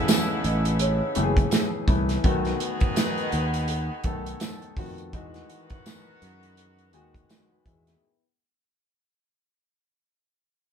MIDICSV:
0, 0, Header, 1, 6, 480
1, 0, Start_track
1, 0, Tempo, 722022
1, 1493, Time_signature, 4, 2, 24, 8
1, 7127, End_track
2, 0, Start_track
2, 0, Title_t, "Celesta"
2, 0, Program_c, 0, 8
2, 304, Note_on_c, 0, 75, 71
2, 536, Note_on_c, 0, 73, 83
2, 1707, Note_off_c, 0, 73, 0
2, 1711, Note_off_c, 0, 75, 0
2, 1974, Note_on_c, 0, 71, 63
2, 2144, Note_on_c, 0, 75, 53
2, 3626, Note_off_c, 0, 71, 0
2, 3652, Note_on_c, 0, 78, 65
2, 3781, Note_off_c, 0, 75, 0
2, 5543, Note_off_c, 0, 78, 0
2, 7127, End_track
3, 0, Start_track
3, 0, Title_t, "Grand piano"
3, 0, Program_c, 1, 0
3, 0, Control_c, 1, 64, 127
3, 0, Note_on_c, 1, 52, 86
3, 0, Note_on_c, 1, 56, 59
3, 0, Note_on_c, 1, 57, 78
3, 0, Note_on_c, 1, 59, 80
3, 0, Note_on_c, 1, 61, 67
3, 0, Note_on_c, 1, 63, 89
3, 0, Note_on_c, 1, 68, 94
3, 0, Note_on_c, 1, 69, 95
3, 290, Note_off_c, 1, 52, 0
3, 292, Note_off_c, 1, 59, 0
3, 293, Note_off_c, 1, 68, 0
3, 313, Note_off_c, 1, 57, 0
3, 769, Note_on_c, 1, 52, 79
3, 771, Note_on_c, 1, 57, 80
3, 774, Note_on_c, 1, 59, 73
3, 777, Note_on_c, 1, 67, 67
3, 820, Note_on_c, 1, 68, 86
3, 826, Note_off_c, 1, 67, 0
3, 1148, Note_off_c, 1, 52, 0
3, 1149, Note_off_c, 1, 57, 0
3, 1151, Note_off_c, 1, 59, 0
3, 1174, Note_off_c, 1, 68, 0
3, 1248, Note_on_c, 1, 52, 83
3, 1252, Note_on_c, 1, 57, 73
3, 1253, Note_on_c, 1, 59, 81
3, 1257, Note_on_c, 1, 64, 80
3, 1439, Note_off_c, 1, 52, 0
3, 1441, Note_off_c, 1, 57, 0
3, 1442, Note_off_c, 1, 59, 0
3, 1444, Note_off_c, 1, 64, 0
3, 1487, Note_on_c, 1, 51, 87
3, 1490, Note_on_c, 1, 57, 84
3, 1494, Note_on_c, 1, 59, 85
3, 1497, Note_on_c, 1, 66, 89
3, 1501, Control_c, 1, 64, 0
3, 1503, Note_off_c, 1, 61, 0
3, 1504, Note_off_c, 1, 69, 0
3, 1505, Note_off_c, 1, 63, 0
3, 1506, Note_off_c, 1, 56, 0
3, 1602, Control_c, 1, 64, 127
3, 2207, Note_off_c, 1, 51, 0
3, 2209, Note_off_c, 1, 57, 0
3, 2210, Note_off_c, 1, 59, 0
3, 2212, Note_off_c, 1, 66, 0
3, 2689, Note_on_c, 1, 51, 87
3, 2693, Note_on_c, 1, 57, 79
3, 2696, Note_on_c, 1, 59, 70
3, 2698, Note_on_c, 1, 69, 89
3, 3068, Note_off_c, 1, 51, 0
3, 3070, Note_off_c, 1, 57, 0
3, 3071, Note_off_c, 1, 59, 0
3, 3073, Note_off_c, 1, 69, 0
3, 3171, Note_on_c, 1, 51, 77
3, 3175, Note_on_c, 1, 57, 64
3, 3177, Note_on_c, 1, 59, 73
3, 3180, Note_on_c, 1, 66, 87
3, 3360, Note_off_c, 1, 51, 0
3, 3362, Note_off_c, 1, 57, 0
3, 3363, Note_off_c, 1, 59, 0
3, 3365, Note_off_c, 1, 66, 0
3, 3413, Note_on_c, 1, 52, 85
3, 3417, Note_on_c, 1, 56, 75
3, 3419, Note_on_c, 1, 63, 78
3, 3421, Control_c, 1, 64, 0
3, 3421, Note_on_c, 1, 66, 85
3, 3554, Control_c, 1, 64, 127
3, 4130, Note_off_c, 1, 52, 0
3, 4132, Note_off_c, 1, 56, 0
3, 4133, Note_off_c, 1, 63, 0
3, 4134, Note_off_c, 1, 66, 0
3, 4609, Note_on_c, 1, 51, 87
3, 4611, Note_on_c, 1, 56, 76
3, 4613, Note_on_c, 1, 80, 71
3, 4615, Note_on_c, 1, 63, 68
3, 4619, Note_on_c, 1, 66, 95
3, 4836, Note_off_c, 1, 80, 0
3, 4854, Note_off_c, 1, 63, 0
3, 4854, Note_on_c, 1, 78, 72
3, 4855, Note_off_c, 1, 66, 0
3, 4988, Note_off_c, 1, 51, 0
3, 4989, Note_off_c, 1, 56, 0
3, 4995, Note_on_c, 1, 71, 61
3, 4999, Note_on_c, 1, 66, 53
3, 5077, Note_off_c, 1, 78, 0
3, 5089, Note_off_c, 1, 71, 0
3, 5091, Note_off_c, 1, 66, 0
3, 5095, Note_on_c, 1, 68, 63
3, 5095, Note_on_c, 1, 76, 65
3, 5100, Note_on_c, 1, 63, 51
3, 5226, Note_off_c, 1, 68, 0
3, 5228, Note_off_c, 1, 63, 0
3, 5234, Note_on_c, 1, 64, 58
3, 5238, Note_on_c, 1, 59, 50
3, 5317, Note_off_c, 1, 76, 0
3, 5342, Control_c, 1, 64, 0
3, 5461, Note_off_c, 1, 64, 0
3, 5463, Note_off_c, 1, 59, 0
3, 7127, End_track
4, 0, Start_track
4, 0, Title_t, "Horn section"
4, 0, Program_c, 2, 61
4, 0, Note_on_c, 2, 49, 74
4, 0, Note_on_c, 2, 59, 72
4, 0, Note_on_c, 2, 64, 83
4, 1227, Note_off_c, 2, 49, 0
4, 1227, Note_off_c, 2, 64, 0
4, 1228, Note_off_c, 2, 59, 0
4, 1490, Note_on_c, 2, 68, 82
4, 1491, Note_on_c, 2, 51, 77
4, 1491, Note_on_c, 2, 59, 81
4, 3144, Note_off_c, 2, 59, 0
4, 3144, Note_off_c, 2, 68, 0
4, 3145, Note_off_c, 2, 51, 0
4, 3411, Note_on_c, 2, 59, 80
4, 3411, Note_on_c, 2, 66, 80
4, 3412, Note_on_c, 2, 51, 74
4, 5065, Note_off_c, 2, 51, 0
4, 5065, Note_off_c, 2, 59, 0
4, 5065, Note_off_c, 2, 66, 0
4, 7127, End_track
5, 0, Start_track
5, 0, Title_t, "Fingered electric bass"
5, 0, Program_c, 3, 33
5, 295, Note_on_c, 3, 33, 86
5, 663, Note_off_c, 3, 33, 0
5, 777, Note_on_c, 3, 30, 89
5, 960, Note_off_c, 3, 30, 0
5, 1249, Note_on_c, 3, 36, 83
5, 1435, Note_off_c, 3, 36, 0
5, 1491, Note_on_c, 3, 35, 119
5, 1676, Note_off_c, 3, 35, 0
5, 2211, Note_on_c, 3, 39, 90
5, 2580, Note_off_c, 3, 39, 0
5, 2688, Note_on_c, 3, 35, 87
5, 2874, Note_off_c, 3, 35, 0
5, 3170, Note_on_c, 3, 41, 73
5, 3414, Note_off_c, 3, 41, 0
5, 3414, Note_on_c, 3, 40, 100
5, 3597, Note_off_c, 3, 40, 0
5, 4134, Note_on_c, 3, 42, 88
5, 4617, Note_off_c, 3, 42, 0
5, 4617, Note_on_c, 3, 39, 77
5, 4799, Note_off_c, 3, 39, 0
5, 5092, Note_on_c, 3, 40, 80
5, 5276, Note_off_c, 3, 40, 0
5, 7127, End_track
6, 0, Start_track
6, 0, Title_t, "Drums"
6, 54, Note_on_c, 9, 42, 73
6, 56, Note_on_c, 9, 54, 97
6, 60, Note_on_c, 9, 38, 119
6, 121, Note_off_c, 9, 42, 0
6, 123, Note_off_c, 9, 54, 0
6, 126, Note_off_c, 9, 38, 0
6, 294, Note_on_c, 9, 42, 57
6, 361, Note_off_c, 9, 42, 0
6, 434, Note_on_c, 9, 42, 59
6, 501, Note_off_c, 9, 42, 0
6, 528, Note_on_c, 9, 42, 84
6, 594, Note_off_c, 9, 42, 0
6, 765, Note_on_c, 9, 42, 69
6, 832, Note_off_c, 9, 42, 0
6, 909, Note_on_c, 9, 36, 87
6, 914, Note_on_c, 9, 42, 52
6, 975, Note_off_c, 9, 36, 0
6, 981, Note_off_c, 9, 42, 0
6, 1006, Note_on_c, 9, 42, 84
6, 1010, Note_on_c, 9, 54, 83
6, 1015, Note_on_c, 9, 38, 113
6, 1073, Note_off_c, 9, 42, 0
6, 1076, Note_off_c, 9, 54, 0
6, 1081, Note_off_c, 9, 38, 0
6, 1248, Note_on_c, 9, 36, 99
6, 1248, Note_on_c, 9, 42, 74
6, 1314, Note_off_c, 9, 36, 0
6, 1314, Note_off_c, 9, 42, 0
6, 1389, Note_on_c, 9, 42, 49
6, 1392, Note_on_c, 9, 38, 35
6, 1456, Note_off_c, 9, 42, 0
6, 1459, Note_off_c, 9, 38, 0
6, 1489, Note_on_c, 9, 42, 77
6, 1491, Note_on_c, 9, 36, 101
6, 1555, Note_off_c, 9, 42, 0
6, 1557, Note_off_c, 9, 36, 0
6, 1628, Note_on_c, 9, 42, 34
6, 1634, Note_on_c, 9, 38, 35
6, 1695, Note_off_c, 9, 42, 0
6, 1700, Note_off_c, 9, 38, 0
6, 1731, Note_on_c, 9, 42, 80
6, 1797, Note_off_c, 9, 42, 0
6, 1864, Note_on_c, 9, 42, 45
6, 1871, Note_on_c, 9, 36, 96
6, 1931, Note_off_c, 9, 42, 0
6, 1937, Note_off_c, 9, 36, 0
6, 1970, Note_on_c, 9, 42, 86
6, 1974, Note_on_c, 9, 54, 90
6, 1976, Note_on_c, 9, 38, 110
6, 2037, Note_off_c, 9, 42, 0
6, 2040, Note_off_c, 9, 54, 0
6, 2042, Note_off_c, 9, 38, 0
6, 2111, Note_on_c, 9, 42, 34
6, 2178, Note_off_c, 9, 42, 0
6, 2208, Note_on_c, 9, 42, 61
6, 2275, Note_off_c, 9, 42, 0
6, 2351, Note_on_c, 9, 42, 57
6, 2418, Note_off_c, 9, 42, 0
6, 2445, Note_on_c, 9, 42, 79
6, 2512, Note_off_c, 9, 42, 0
6, 2683, Note_on_c, 9, 42, 60
6, 2688, Note_on_c, 9, 36, 94
6, 2750, Note_off_c, 9, 42, 0
6, 2754, Note_off_c, 9, 36, 0
6, 2835, Note_on_c, 9, 42, 55
6, 2901, Note_off_c, 9, 42, 0
6, 2925, Note_on_c, 9, 42, 76
6, 2931, Note_on_c, 9, 54, 83
6, 2934, Note_on_c, 9, 38, 100
6, 2992, Note_off_c, 9, 42, 0
6, 2998, Note_off_c, 9, 54, 0
6, 3000, Note_off_c, 9, 38, 0
6, 3071, Note_on_c, 9, 42, 31
6, 3138, Note_off_c, 9, 42, 0
6, 3169, Note_on_c, 9, 36, 102
6, 3170, Note_on_c, 9, 46, 53
6, 3235, Note_off_c, 9, 36, 0
6, 3236, Note_off_c, 9, 46, 0
6, 3312, Note_on_c, 9, 42, 45
6, 3378, Note_off_c, 9, 42, 0
6, 3412, Note_on_c, 9, 36, 90
6, 3412, Note_on_c, 9, 42, 76
6, 3478, Note_off_c, 9, 42, 0
6, 3479, Note_off_c, 9, 36, 0
6, 3550, Note_on_c, 9, 42, 30
6, 3556, Note_on_c, 9, 38, 30
6, 3617, Note_off_c, 9, 42, 0
6, 3622, Note_off_c, 9, 38, 0
6, 3654, Note_on_c, 9, 42, 67
6, 3720, Note_off_c, 9, 42, 0
6, 3787, Note_on_c, 9, 42, 49
6, 3793, Note_on_c, 9, 36, 89
6, 3854, Note_off_c, 9, 42, 0
6, 3859, Note_off_c, 9, 36, 0
6, 3894, Note_on_c, 9, 42, 87
6, 3896, Note_on_c, 9, 54, 92
6, 3900, Note_on_c, 9, 38, 109
6, 3960, Note_off_c, 9, 42, 0
6, 3962, Note_off_c, 9, 54, 0
6, 3966, Note_off_c, 9, 38, 0
6, 4134, Note_on_c, 9, 42, 67
6, 4201, Note_off_c, 9, 42, 0
6, 4274, Note_on_c, 9, 42, 50
6, 4340, Note_off_c, 9, 42, 0
6, 4369, Note_on_c, 9, 42, 76
6, 4436, Note_off_c, 9, 42, 0
6, 4511, Note_on_c, 9, 42, 33
6, 4577, Note_off_c, 9, 42, 0
6, 4608, Note_on_c, 9, 42, 65
6, 4674, Note_off_c, 9, 42, 0
6, 4750, Note_on_c, 9, 36, 91
6, 4757, Note_on_c, 9, 42, 57
6, 4816, Note_off_c, 9, 36, 0
6, 4823, Note_off_c, 9, 42, 0
6, 4849, Note_on_c, 9, 42, 76
6, 4854, Note_on_c, 9, 54, 85
6, 4858, Note_on_c, 9, 38, 108
6, 4916, Note_off_c, 9, 42, 0
6, 4920, Note_off_c, 9, 54, 0
6, 4924, Note_off_c, 9, 38, 0
6, 5090, Note_on_c, 9, 36, 92
6, 5092, Note_on_c, 9, 42, 63
6, 5157, Note_off_c, 9, 36, 0
6, 5158, Note_off_c, 9, 42, 0
6, 5232, Note_on_c, 9, 42, 47
6, 5235, Note_on_c, 9, 38, 30
6, 5299, Note_off_c, 9, 42, 0
6, 5302, Note_off_c, 9, 38, 0
6, 7127, End_track
0, 0, End_of_file